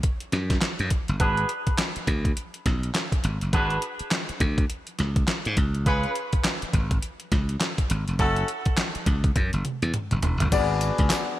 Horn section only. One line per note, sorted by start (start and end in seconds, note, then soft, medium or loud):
1.20 1.47 D4 loud
1.20 1.47 F#4 medium
1.20 1.47 G#4 medium
1.20 1.47 B4 loud
3.53 3.80 D4 medium
3.53 3.80 F#4 medium
3.53 3.80 G#4 medium
3.53 3.80 B4 loud
5.86 6.13 C#4 medium
5.86 6.13 F4 medium
5.86 6.13 G#4 medium
5.86 6.13 B4 loud
8.19 8.46 C#4 medium
8.19 8.46 E4 medium
8.19 8.46 F#4 medium
8.19 8.46 A4 loud